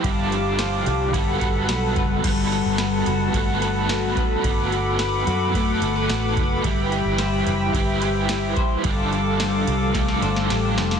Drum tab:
CC |----------------|x---------------|----------------|----------------|
RD |x-x-x-x-x-x-x-x-|x-x-x-x-x-x-x-x-|x-x-x-x-x-x-x-x-|x-x-x-x-x-x-x-x-|
TB |----x-------x---|----x-------x---|----x-------x---|----x-------x---|
SD |----o-------o---|----o-------o---|----o-------o---|----o-------o---|
BD |o-------o-o---o-|o-------o-----o-|o-------o-----o-|o-------o-----o-|

CC |----------------|
RD |x-x-x-x-x-x-x-x-|
TB |----x-----------|
SD |----o---oo-oo-oo|
BD |o-------o-------|